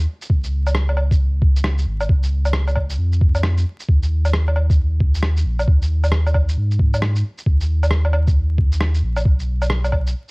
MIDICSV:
0, 0, Header, 1, 3, 480
1, 0, Start_track
1, 0, Tempo, 447761
1, 322, Time_signature, 4, 2, 24, 8
1, 11048, End_track
2, 0, Start_track
2, 0, Title_t, "Sub bass"
2, 0, Program_c, 0, 38
2, 319, Note_on_c, 0, 37, 96
2, 1989, Note_off_c, 0, 37, 0
2, 1998, Note_on_c, 0, 32, 87
2, 2226, Note_off_c, 0, 32, 0
2, 2240, Note_on_c, 0, 37, 103
2, 3190, Note_off_c, 0, 37, 0
2, 3199, Note_on_c, 0, 41, 100
2, 3909, Note_off_c, 0, 41, 0
2, 4167, Note_on_c, 0, 39, 105
2, 5829, Note_off_c, 0, 39, 0
2, 5835, Note_on_c, 0, 34, 91
2, 6064, Note_off_c, 0, 34, 0
2, 6086, Note_on_c, 0, 39, 105
2, 7032, Note_off_c, 0, 39, 0
2, 7045, Note_on_c, 0, 44, 96
2, 7752, Note_off_c, 0, 44, 0
2, 8003, Note_on_c, 0, 39, 107
2, 9671, Note_off_c, 0, 39, 0
2, 9680, Note_on_c, 0, 34, 91
2, 9907, Note_off_c, 0, 34, 0
2, 9919, Note_on_c, 0, 35, 96
2, 10869, Note_off_c, 0, 35, 0
2, 11048, End_track
3, 0, Start_track
3, 0, Title_t, "Drums"
3, 232, Note_on_c, 9, 82, 56
3, 320, Note_on_c, 9, 36, 120
3, 339, Note_off_c, 9, 82, 0
3, 427, Note_off_c, 9, 36, 0
3, 471, Note_on_c, 9, 82, 45
3, 578, Note_off_c, 9, 82, 0
3, 716, Note_on_c, 9, 77, 53
3, 716, Note_on_c, 9, 82, 59
3, 801, Note_on_c, 9, 37, 112
3, 823, Note_off_c, 9, 77, 0
3, 823, Note_off_c, 9, 82, 0
3, 909, Note_off_c, 9, 37, 0
3, 955, Note_on_c, 9, 77, 49
3, 1040, Note_off_c, 9, 77, 0
3, 1040, Note_on_c, 9, 77, 57
3, 1147, Note_off_c, 9, 77, 0
3, 1192, Note_on_c, 9, 36, 113
3, 1197, Note_on_c, 9, 82, 62
3, 1300, Note_off_c, 9, 36, 0
3, 1304, Note_off_c, 9, 82, 0
3, 1521, Note_on_c, 9, 36, 108
3, 1628, Note_off_c, 9, 36, 0
3, 1677, Note_on_c, 9, 82, 60
3, 1759, Note_on_c, 9, 37, 106
3, 1784, Note_off_c, 9, 82, 0
3, 1866, Note_off_c, 9, 37, 0
3, 1911, Note_on_c, 9, 82, 47
3, 2018, Note_off_c, 9, 82, 0
3, 2150, Note_on_c, 9, 77, 61
3, 2150, Note_on_c, 9, 82, 54
3, 2243, Note_on_c, 9, 36, 127
3, 2257, Note_off_c, 9, 77, 0
3, 2257, Note_off_c, 9, 82, 0
3, 2350, Note_off_c, 9, 36, 0
3, 2391, Note_on_c, 9, 82, 44
3, 2499, Note_off_c, 9, 82, 0
3, 2630, Note_on_c, 9, 77, 51
3, 2630, Note_on_c, 9, 82, 58
3, 2716, Note_on_c, 9, 37, 120
3, 2738, Note_off_c, 9, 77, 0
3, 2738, Note_off_c, 9, 82, 0
3, 2823, Note_off_c, 9, 37, 0
3, 2870, Note_on_c, 9, 77, 49
3, 2870, Note_on_c, 9, 82, 30
3, 2956, Note_off_c, 9, 77, 0
3, 2956, Note_on_c, 9, 77, 61
3, 2965, Note_on_c, 9, 36, 64
3, 2977, Note_off_c, 9, 82, 0
3, 3063, Note_off_c, 9, 77, 0
3, 3072, Note_off_c, 9, 36, 0
3, 3108, Note_on_c, 9, 82, 60
3, 3216, Note_off_c, 9, 82, 0
3, 3349, Note_on_c, 9, 82, 32
3, 3445, Note_on_c, 9, 36, 112
3, 3456, Note_off_c, 9, 82, 0
3, 3552, Note_off_c, 9, 36, 0
3, 3591, Note_on_c, 9, 77, 55
3, 3591, Note_on_c, 9, 82, 61
3, 3681, Note_on_c, 9, 37, 104
3, 3698, Note_off_c, 9, 77, 0
3, 3698, Note_off_c, 9, 82, 0
3, 3788, Note_off_c, 9, 37, 0
3, 3832, Note_on_c, 9, 82, 43
3, 3939, Note_off_c, 9, 82, 0
3, 4071, Note_on_c, 9, 82, 52
3, 4165, Note_on_c, 9, 36, 116
3, 4178, Note_off_c, 9, 82, 0
3, 4272, Note_off_c, 9, 36, 0
3, 4317, Note_on_c, 9, 82, 44
3, 4424, Note_off_c, 9, 82, 0
3, 4556, Note_on_c, 9, 77, 51
3, 4556, Note_on_c, 9, 82, 57
3, 4646, Note_on_c, 9, 37, 113
3, 4663, Note_off_c, 9, 77, 0
3, 4663, Note_off_c, 9, 82, 0
3, 4753, Note_off_c, 9, 37, 0
3, 4801, Note_on_c, 9, 77, 53
3, 4887, Note_off_c, 9, 77, 0
3, 4887, Note_on_c, 9, 77, 55
3, 4994, Note_off_c, 9, 77, 0
3, 5037, Note_on_c, 9, 36, 110
3, 5041, Note_on_c, 9, 82, 57
3, 5144, Note_off_c, 9, 36, 0
3, 5148, Note_off_c, 9, 82, 0
3, 5363, Note_on_c, 9, 36, 112
3, 5471, Note_off_c, 9, 36, 0
3, 5516, Note_on_c, 9, 82, 59
3, 5602, Note_on_c, 9, 37, 97
3, 5623, Note_off_c, 9, 82, 0
3, 5709, Note_off_c, 9, 37, 0
3, 5755, Note_on_c, 9, 82, 41
3, 5862, Note_off_c, 9, 82, 0
3, 5995, Note_on_c, 9, 77, 60
3, 5995, Note_on_c, 9, 82, 54
3, 6084, Note_on_c, 9, 36, 120
3, 6102, Note_off_c, 9, 77, 0
3, 6102, Note_off_c, 9, 82, 0
3, 6192, Note_off_c, 9, 36, 0
3, 6239, Note_on_c, 9, 82, 43
3, 6346, Note_off_c, 9, 82, 0
3, 6471, Note_on_c, 9, 77, 54
3, 6471, Note_on_c, 9, 82, 54
3, 6557, Note_on_c, 9, 37, 108
3, 6578, Note_off_c, 9, 77, 0
3, 6578, Note_off_c, 9, 82, 0
3, 6664, Note_off_c, 9, 37, 0
3, 6717, Note_on_c, 9, 77, 51
3, 6717, Note_on_c, 9, 82, 29
3, 6800, Note_off_c, 9, 77, 0
3, 6800, Note_on_c, 9, 77, 60
3, 6803, Note_on_c, 9, 36, 61
3, 6824, Note_off_c, 9, 82, 0
3, 6907, Note_off_c, 9, 77, 0
3, 6910, Note_off_c, 9, 36, 0
3, 6955, Note_on_c, 9, 82, 56
3, 7062, Note_off_c, 9, 82, 0
3, 7195, Note_on_c, 9, 82, 29
3, 7282, Note_on_c, 9, 36, 106
3, 7303, Note_off_c, 9, 82, 0
3, 7389, Note_off_c, 9, 36, 0
3, 7439, Note_on_c, 9, 77, 58
3, 7439, Note_on_c, 9, 82, 58
3, 7525, Note_on_c, 9, 37, 95
3, 7546, Note_off_c, 9, 77, 0
3, 7546, Note_off_c, 9, 82, 0
3, 7633, Note_off_c, 9, 37, 0
3, 7674, Note_on_c, 9, 82, 42
3, 7781, Note_off_c, 9, 82, 0
3, 7913, Note_on_c, 9, 82, 49
3, 8001, Note_on_c, 9, 36, 111
3, 8020, Note_off_c, 9, 82, 0
3, 8109, Note_off_c, 9, 36, 0
3, 8155, Note_on_c, 9, 82, 46
3, 8263, Note_off_c, 9, 82, 0
3, 8397, Note_on_c, 9, 77, 57
3, 8397, Note_on_c, 9, 82, 56
3, 8477, Note_on_c, 9, 37, 102
3, 8504, Note_off_c, 9, 77, 0
3, 8504, Note_off_c, 9, 82, 0
3, 8584, Note_off_c, 9, 37, 0
3, 8629, Note_on_c, 9, 77, 52
3, 8718, Note_off_c, 9, 77, 0
3, 8718, Note_on_c, 9, 77, 64
3, 8825, Note_off_c, 9, 77, 0
3, 8871, Note_on_c, 9, 82, 58
3, 8872, Note_on_c, 9, 36, 105
3, 8978, Note_off_c, 9, 82, 0
3, 8980, Note_off_c, 9, 36, 0
3, 9201, Note_on_c, 9, 36, 105
3, 9308, Note_off_c, 9, 36, 0
3, 9351, Note_on_c, 9, 82, 60
3, 9440, Note_on_c, 9, 37, 100
3, 9458, Note_off_c, 9, 82, 0
3, 9547, Note_off_c, 9, 37, 0
3, 9588, Note_on_c, 9, 82, 45
3, 9695, Note_off_c, 9, 82, 0
3, 9826, Note_on_c, 9, 77, 66
3, 9826, Note_on_c, 9, 82, 55
3, 9920, Note_on_c, 9, 36, 118
3, 9933, Note_off_c, 9, 77, 0
3, 9933, Note_off_c, 9, 82, 0
3, 10027, Note_off_c, 9, 36, 0
3, 10071, Note_on_c, 9, 82, 47
3, 10178, Note_off_c, 9, 82, 0
3, 10310, Note_on_c, 9, 77, 56
3, 10310, Note_on_c, 9, 82, 59
3, 10396, Note_on_c, 9, 37, 110
3, 10417, Note_off_c, 9, 77, 0
3, 10417, Note_off_c, 9, 82, 0
3, 10503, Note_off_c, 9, 37, 0
3, 10553, Note_on_c, 9, 77, 59
3, 10553, Note_on_c, 9, 82, 33
3, 10636, Note_off_c, 9, 77, 0
3, 10636, Note_on_c, 9, 77, 62
3, 10639, Note_on_c, 9, 36, 62
3, 10660, Note_off_c, 9, 82, 0
3, 10744, Note_off_c, 9, 77, 0
3, 10746, Note_off_c, 9, 36, 0
3, 10794, Note_on_c, 9, 82, 58
3, 10901, Note_off_c, 9, 82, 0
3, 11048, End_track
0, 0, End_of_file